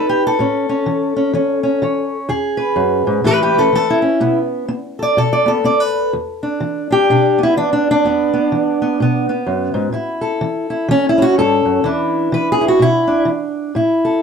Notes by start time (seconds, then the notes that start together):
Already playing: B3 D#4 B4
0.09 G4
0.27 A4
0.39 A2 C#4
0.69 C#4
0.86 E3
1.16 C#4
1.33 E3 C#4
1.63 C#4
1.82 E3 C#5
2.29 E2 G#4
2.57 B4
2.76 F#2
3.07 G#2
3.24 A2 E3 A3 G4 B4
3.42 G4 B4
3.54 A3
3.58 C#4 A4
3.73 E3 A4
3.90 E4
4.02 C#4
4.20 B2 B3
4.68 B3
4.99 A4 D5
5.17 B2 A4
5.33 D5
5.46 B3 A4
5.64 B3 D5
5.80 B4
6.13 E2
6.43 D4
6.60 E3
6.91 D4 G4
7.10 B2 D4
7.38 B3
7.43 E4
7.57 E3 D4
7.73 D4
7.91 D4
8.04 E2 B3
8.34 B3
8.52 E3
8.82 B3
9.00 B2 B3
9.29 B3
9.46 F#2
9.74 G#2
9.92 A2 E4
10.21 A4
10.41 E3
10.70 E4
10.88 E3 C#4
11.09 E4
11.18 C#4
11.22 F#4
11.38 G2 A4
11.65 F#2
11.84 E2 E3 D4 E4
12.32 E3 B4
12.52 G#4
12.61 E4
12.68 F#4
12.79 B2 E4
13.07 D4
13.25 E3
13.75 A2 E4
14.05 A4